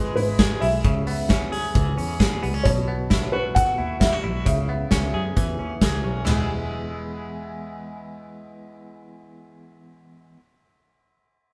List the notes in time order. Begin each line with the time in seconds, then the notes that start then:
Already playing: E1 E3 G#3 B3 E4 G#4 B4
0.16 G#1 E4 B4, open hi-hat
0.39 G#4, kick, snare, closed hi-hat
0.60 B1 E4 E5, open hi-hat
0.84 C#2 C#3, kick, closed hi-hat
1.07 B3, open hi-hat
1.29 C#4, kick, snare, closed hi-hat
1.52 G#4, open hi-hat
1.75 C#2 E3, kick, closed hi-hat
1.98 E2 C#4, open hi-hat
2.20 D#2 G#4, kick, snare, closed hi-hat
2.43 C#2 B3, open hi-hat
2.54 C#4
2.63 B1 B2 C#5, kick, closed hi-hat
2.88 B3
3.10 E4, kick, snare, closed hi-hat
3.32 F#4 B4
3.55 F#5, kick, closed hi-hat
3.78 D#2 E4
4.00 E4 E5, kick, snare, closed hi-hat
4.13 F#4
4.24 B1 E4
4.45 C#2 C#3 E5, kick, closed hi-hat
4.69 B3
4.91 C#2 C#4, kick, snare, closed hi-hat
5.14 F#2 G#4
5.37 E2 E3, kick, closed hi-hat
5.59 D#2 C#4
5.81 C#2 G#4, kick, snare, closed hi-hat
6.04 B1 C#4
6.25 E1 E3 G#3 B3, snare, floor tom, ride bell
6.29 E4 G#4